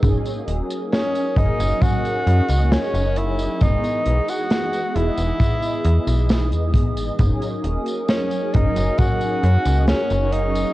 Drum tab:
HH |xxxxxxxxxxxxxxxx|xxxxxxxxxxxxxxxx|xxxxxxxxxxxxxxxx|
TB |xx-xxx-xxx-xxx-x|xx-xxx-xxx-xxx-x|xx-xxx-xxx-xxx-x|
SD |----o-------o---|----o-------o---|----o-------o---|
BD |o-----o-o-------|o-------o-----o-|o-----o-o-------|